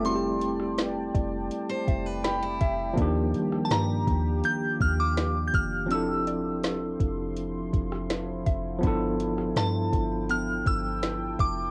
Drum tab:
HH |x-x-x-x-x-x-x-x-|x-x-x-x-x-x-x-x-|x-x-x-x-x-x-x-x-|x-x-x-x-x-x-x-x-|
SD |---ro-------o---|---ro-------o---|----o------ro---|---ro-------o---|
BD |------o---o---o-|o-----o---o---o-|------o---o---o-|o-----o---o---o-|